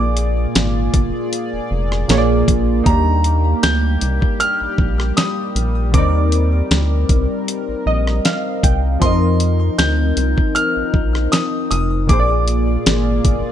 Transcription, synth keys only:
Already playing: A#2 A#3 G#4 D5
2.08 A#2 A#3 G#4 C#5
2.18 D5
2.84 A#3 D#4 G4
2.90 D4
5.92 D3 C4 A#4
5.98 D#4 D5
7.87 D#5
8.25 F5
8.64 G5
9.00 F3 C4 A#4
9.06 D#5
12.07 A#2 A#3 G#4
12.13 C5
12.20 D5

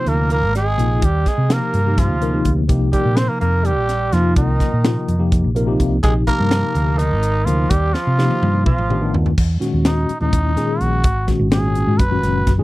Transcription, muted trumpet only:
Already playing: C5
0.09 A#4
0.33 A#4
0.57 G#4
1.05 G4
1.28 G#4
1.53 A#4
2.00 F4
2.93 G4
3.18 C5
3.29 A#4
3.40 A#4
3.66 G4
4.13 F4
4.36 D#4
6.03 G#4
6.27 A#4
6.98 D#4
7.45 F4
7.70 G4
7.94 F4
8.66 F4
9.87 D#4
10.21 D#4
10.81 F#4
11.52 G#4
11.99 B4

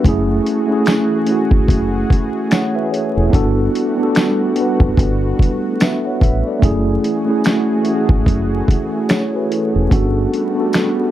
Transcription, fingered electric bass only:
0.05 F#1
1.52 G#1
1.69 F#1
3.17 E1
3.34 G1
4.81 F#1
4.98 G1
6.22 A1
6.63 F#1
8.10 G#1
8.27 F#1
9.75 E1
9.92 G1

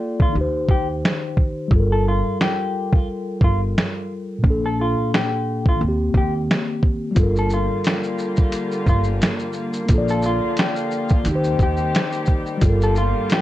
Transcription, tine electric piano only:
Already playing: A#3 F4 A4 D5
0.29 D#3
0.33 D#4
0.37 G4 C5
1.68 G3 F4
1.76 A4
1.80 A#4
4.39 A#2
4.43 A#3 D4
4.50 A4
5.76 D#3
5.80 A#3
5.84 C4
5.88 G4
7.11 G3
7.15 F4 A4
7.23 A#4
9.86 A#3
9.90 F4
9.94 A4 D5
11.23 D#3
11.27 D#4
11.31 G4
11.36 C5
12.57 G3
12.62 F4
12.66 A4
12.70 A#4

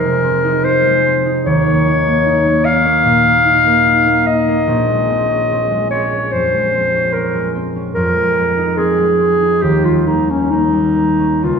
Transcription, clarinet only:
Already playing: A#4
0.64 C5
1.45 C#5
2.65 F5
4.27 D#5
5.90 C#5
6.32 C5
7.13 A#4
7.95 A#4
8.77 G#4
9.62 G4
9.85 F4
10.07 D#4
10.30 C#4
10.51 D#4
11.44 F4

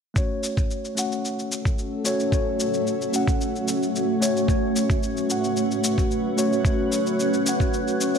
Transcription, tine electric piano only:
0.14 A3 C#4 F#4 C#5
0.95 A3 C#4 F#4 F#5
2.04 A3 C#4 F#4 C#5
2.30 A3 C#4 F#4 C#5
3.12 A3 C#4 F#4
3.16 F#5
4.20 A3 C#4 F#4 C#5
4.46 A3 C#4 F#4 C#5
5.27 A3 C#4 F#4
5.31 F#5
6.37 A3 C#4 F#4 C#5
6.63 A3 C#4 F#4 C#5
7.45 A3 C#4 F#4 F#5
8.14 A3 C#4 F#4

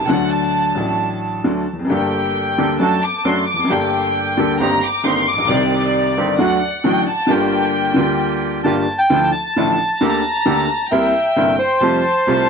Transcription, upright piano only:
0.04 C#2 F#3
0.09 D2 D3 A3 D4 A4
0.75 A1 A2 F#3 A3 D4 A4
1.44 D2 D3 F#3 A3 D4 A4
1.73 E2
1.79 F2
1.85 F#2 G3
1.90 G1 G2 A#3 D4 A4
2.58 D2 D3 G3 A#3 D4 A4
2.79 F#2 F#3 A3 D4 A4
3.25 F#2 F#3 A3 D4 A4
3.54 E2
3.59 F2
3.64 F#2
3.68 G1 G2 G3 A#3 D4
3.73 A4
4.37 D2 D3 G3 A#3 D4 A4
4.60 G1 G2 D#3 A#3 C4 G4
5.04 G1 G2 D#3 A#3 C4 G4
5.33 A1
5.38 A#1
5.45 B1 D#3 G3
5.49 C2 C3 C4 G4
6.17 G1 G2 D#3 G3 C4 G4
6.39 D2 D3 F#3 A3 F#4
6.84 A1 A2 D3 F#3 A3 F#4
7.27 G1 G2 D3 G3 A#3
7.31 F4
7.96 D2 D3 G3 A#3 F4
8.64 G1 G2 D3 G3 A#3 F4
9.10 D2 D3 F3 A3 E4
9.56 A1 A2 D3 F3 A3 E4
10.01 D2 D3 A3 A#3 G4
10.45 D2 D3 A3 A#3 G4
10.91 C2 C3 G3 A#3 E4
11.36 G1 G2 C3 G3 A#3 E4
11.80 F2 C3 F3 G3 A3 F4
12.27 C2 C3 G3 A3 F4

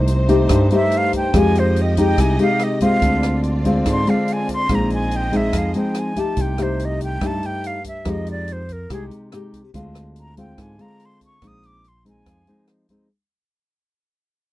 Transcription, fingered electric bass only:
Already playing: C2
0.50 G2
1.34 F2
2.18 C2
3.02 D2
3.86 G#2
4.69 A#1
5.53 F2
6.37 C2
7.21 G2
8.06 F2
8.90 C2
9.74 D2
10.58 G#2
11.42 A#1
12.26 F2

